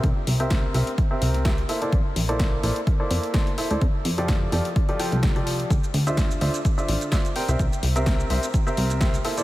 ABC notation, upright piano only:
X:1
M:4/4
L:1/16
Q:"Swing 16ths" 1/4=127
K:Cmix
V:1 name="Upright piano"
z3 [CGBce]3 [CGBce] z2 [CGBce]3 [Gce] z [B,EAce] [B,EAcd] | z3 [B,EAcd]3 [B,EAcd] z2 [B,EAcd]3 [B,EAcd] z [EAce] [EAcd] | z3 [F,FGAd]3 [F,FGAd] z2 [F,FGAd] [F,FGAg]3 [F,FGAd]3 | z3 [D,Fcde]3 [D,Fcde] z2 [D,Fcde]3 [Fcde] z [CGBcg] [CGBce] |
z3 [CGBce]3 [CGBce] z2 [CGBce]3 [GBce] z [B,EAce] [B,EAcd] |]